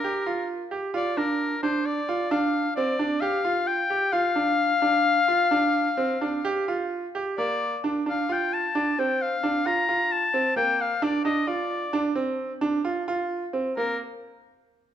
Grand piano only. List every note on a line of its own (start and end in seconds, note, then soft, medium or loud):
0.04 0.21 G4 medium
0.26 0.61 F4 medium
0.71 0.89 G4 medium
0.94 1.11 F4 medium
1.17 1.52 D4 medium
1.63 1.97 D4 medium
2.09 2.26 F4 medium
2.31 2.66 D4 medium
2.77 2.94 C4 medium
2.99 3.17 D4 medium
3.22 3.39 G4 medium
3.45 3.79 F4 medium
3.90 4.08 G4 medium
4.13 4.30 F4 medium
4.36 4.71 D4 medium
4.82 5.17 D4 medium
5.28 5.46 F4 medium
5.51 5.86 D4 medium
5.97 6.15 C4 medium
6.21 6.39 D4 medium
6.45 6.62 G4 medium
6.68 7.04 F4 medium
7.15 7.32 G4 medium
7.38 7.73 A#3 medium
7.84 8.01 D4 medium
8.06 8.24 D4 medium
8.29 8.64 F4 medium
8.75 8.93 D4 medium
8.99 9.33 C4 medium
9.43 9.61 D4 medium
9.66 9.84 F4 medium
9.89 10.23 F4 medium
10.34 10.51 C4 medium
10.56 10.91 A#3 medium
11.02 11.20 D4 medium
11.25 11.42 D4 medium
11.47 11.82 F4 medium
11.93 12.11 D4 medium
12.15 12.50 C4 medium
12.61 12.79 D4 medium
12.85 13.02 F4 medium
13.08 13.43 F4 medium
13.53 13.71 C4 medium
13.77 13.99 A#3 medium